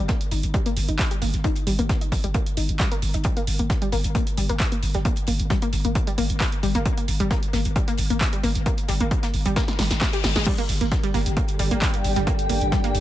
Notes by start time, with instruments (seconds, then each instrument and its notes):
0.08 synth arpeggio sound A#3, kick, snare, closed hi-hat
0.21 closed hi-hat
0.31 808-style bass G1, synth arpeggio sound D#4, closed hi-hat, open hi-hat
0.43 808-style bass G1, closed hi-hat
0.54 synth arpeggio sound G3, kick, closed hi-hat
0.66 synth arpeggio sound A#3, closed hi-hat
0.77 808-style bass G1, closed hi-hat, open hi-hat
0.88 808-style bass G1, synth arpeggio sound D#4, closed hi-hat
0.99 kick, snare, clap, closed hi-hat
1.11 synth arpeggio sound G3, closed hi-hat
1.22 808-style bass G1, synth arpeggio sound A#3, closed hi-hat, open hi-hat
1.33 808-style bass G1, snare, closed hi-hat
1.44 synth arpeggio sound D#4, kick, closed hi-hat
1.55 closed hi-hat
1.67 808-style bass G1, synth arpeggio sound G3, closed hi-hat, open hi-hat
1.79 808-style bass G1, synth arpeggio sound A#3, closed hi-hat
1.89 kick, snare, closed hi-hat
2.01 synth arpeggio sound D#4, closed hi-hat
2.12 808-style bass G1, kick, closed hi-hat, open hi-hat
2.24 808-style bass G1, synth arpeggio sound G3, closed hi-hat
2.34 synth arpeggio sound A#3, kick, closed hi-hat
2.46 closed hi-hat
2.57 808-style bass G1, synth arpeggio sound D#4, closed hi-hat, open hi-hat
2.69 808-style bass G1, closed hi-hat
2.80 synth arpeggio sound G3, kick, snare, clap, closed hi-hat
2.92 synth arpeggio sound A#3, closed hi-hat
3.02 808-style bass G1, closed hi-hat, open hi-hat
3.14 808-style bass G1, synth arpeggio sound D#4, closed hi-hat
3.24 synth arpeggio sound G3, kick, closed hi-hat
3.37 synth arpeggio sound A#3, closed hi-hat
3.47 808-style bass G1, closed hi-hat, open hi-hat
3.59 808-style bass G1, synth arpeggio sound A#3, closed hi-hat
3.70 kick, snare, closed hi-hat
3.82 synth arpeggio sound G3, closed hi-hat
3.92 808-style bass G1, synth arpeggio sound A#3, closed hi-hat, open hi-hat
4.04 808-style bass G1, closed hi-hat
4.15 synth arpeggio sound A#3, kick, closed hi-hat
4.27 closed hi-hat
4.37 808-style bass G1, synth arpeggio sound G3, closed hi-hat, open hi-hat
4.49 808-style bass G1, synth arpeggio sound A#3, closed hi-hat
4.59 kick, snare, clap, closed hi-hat
4.72 synth arpeggio sound A#3, closed hi-hat
4.83 808-style bass G1, closed hi-hat, open hi-hat
4.94 808-style bass G1, synth arpeggio sound G3, snare, closed hi-hat
5.05 synth arpeggio sound A#3, kick, closed hi-hat
5.16 closed hi-hat
5.27 808-style bass G1, synth arpeggio sound A#3, closed hi-hat, open hi-hat
5.40 808-style bass G1, closed hi-hat
5.50 synth arpeggio sound G3, kick, snare, closed hi-hat
5.62 synth arpeggio sound A#3, closed hi-hat
5.73 808-style bass G1, closed hi-hat, open hi-hat
5.85 808-style bass G1, synth arpeggio sound A#3, closed hi-hat
5.95 kick, closed hi-hat
6.07 synth arpeggio sound G3, closed hi-hat
6.18 808-style bass G1, synth arpeggio sound A#3, closed hi-hat, open hi-hat
6.30 808-style bass G1, closed hi-hat
6.40 synth arpeggio sound A#3, kick, snare, clap, closed hi-hat
6.52 closed hi-hat
6.63 808-style bass G1, synth arpeggio sound G3, closed hi-hat, open hi-hat
6.75 808-style bass G1, synth arpeggio sound A#3, closed hi-hat
6.85 kick, closed hi-hat
6.97 synth arpeggio sound A#3, closed hi-hat
7.08 808-style bass G1, closed hi-hat, open hi-hat
7.20 808-style bass G1, synth arpeggio sound G3, closed hi-hat
7.31 synth arpeggio sound A#3, kick, snare, closed hi-hat
7.43 closed hi-hat
7.53 808-style bass G1, synth arpeggio sound A#3, snare, closed hi-hat, open hi-hat
7.65 808-style bass G1, closed hi-hat
7.76 synth arpeggio sound G3, kick, closed hi-hat
7.88 synth arpeggio sound A#3, closed hi-hat
7.98 808-style bass G1, closed hi-hat, open hi-hat
8.10 808-style bass G1, synth arpeggio sound A#3, closed hi-hat
8.21 kick, snare, clap, closed hi-hat
8.33 synth arpeggio sound G3, closed hi-hat
8.43 808-style bass G1, synth arpeggio sound A#3, closed hi-hat, open hi-hat
8.55 808-style bass G1, snare, closed hi-hat
8.66 synth arpeggio sound A#3, kick, closed hi-hat
8.77 closed hi-hat
8.88 808-style bass G1, synth arpeggio sound G3, snare, closed hi-hat, open hi-hat
9.00 808-style bass G1, synth arpeggio sound A#3, closed hi-hat
9.11 kick, closed hi-hat
9.23 synth arpeggio sound A#3, snare, closed hi-hat
9.34 808-style bass G1, open hi-hat
9.45 808-style bass G1, synth arpeggio sound G3, closed hi-hat
9.56 synth arpeggio sound A#3, kick, snare, closed hi-hat, reverse cymbal
9.68 snare, closed hi-hat
9.79 808-style bass G1, synth arpeggio sound G3, snare, closed hi-hat, open hi-hat
9.91 808-style bass G1, snare, closed hi-hat
10.01 synth arpeggio sound G4, kick, snare, clap, closed hi-hat
10.13 synth arpeggio sound G4, closed hi-hat
10.24 808-style bass G1, synth arpeggio sound G3, snare, closed hi-hat, open hi-hat
10.36 808-style bass G1, synth arpeggio sound G#3, snare, closed hi-hat
10.46 synth drone G2 D3, synth arpeggio sound G3, ambient pad G4, kick, closed hi-hat, crash
10.58 synth arpeggio sound A#3, closed hi-hat
10.69 808-style bass G1, closed hi-hat, open hi-hat
10.81 808-style bass G1, synth arpeggio sound A#3, ambient pad G5, closed hi-hat
10.92 kick, snare, closed hi-hat
11.03 synth arpeggio sound G3, closed hi-hat
11.09 ambient pad D5
11.14 808-style bass G1, synth arpeggio sound A#3, closed hi-hat, open hi-hat
11.26 808-style bass G1, closed hi-hat
11.37 synth arpeggio sound A#3, kick, closed hi-hat
11.48 closed hi-hat
11.59 808-style bass G1, synth arpeggio sound G3, closed hi-hat, open hi-hat
11.71 808-style bass G1, synth arpeggio sound A#3, closed hi-hat
11.82 kick, snare, clap, closed hi-hat
11.94 synth arpeggio sound A#3, closed hi-hat
12.04 808-style bass G1, closed hi-hat, open hi-hat
12.16 808-style bass G1, synth arpeggio sound G3, snare, closed hi-hat
12.27 synth arpeggio sound A#3, kick, closed hi-hat
12.39 closed hi-hat
12.49 808-style bass G1, synth arpeggio sound A#3, closed hi-hat, open hi-hat
12.61 808-style bass G1, closed hi-hat
12.72 synth arpeggio sound G3, kick, snare, closed hi-hat
12.84 synth arpeggio sound A#3, closed hi-hat
12.95 808-style bass G1, closed hi-hat, open hi-hat